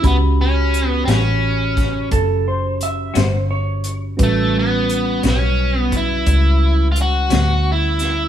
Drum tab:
HH |x-xx-xx-xx-x|x-xx-xx-xx-x|
SD |---o-o---o--|---o-----o-o|
BD |o----oo-----|o----oo-----|